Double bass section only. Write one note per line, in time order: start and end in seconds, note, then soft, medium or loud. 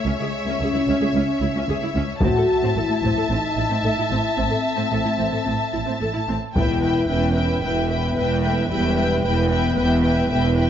0.05 0.11 C#2 medium
0.60 0.65 C#2 soft
0.87 0.92 C#2 medium
1.13 1.19 C#2 medium
1.41 1.46 C#2 medium
1.68 1.73 C#2 soft
1.95 2.00 C#2 medium
2.21 2.26 A1 medium
2.76 2.81 A1 soft
3.02 3.07 A1 medium
3.29 3.34 A1 medium
3.56 3.61 A1 soft
3.82 3.88 A1 soft
4.10 4.15 A1 medium
4.38 4.43 A1 medium
4.92 4.97 A1 soft
5.19 5.24 A1 soft
5.47 5.52 A1 soft
5.74 5.79 A1 soft
6.00 6.06 A1 soft
6.28 6.34 A1 soft
6.56 7.03 E1 soft
7.09 7.57 E1 soft
7.63 8.10 E1 soft
8.17 8.64 E1 medium
8.71 9.18 E1 medium
9.24 9.71 E1 medium
9.77 10.24 E1 medium
10.30 10.70 E1 medium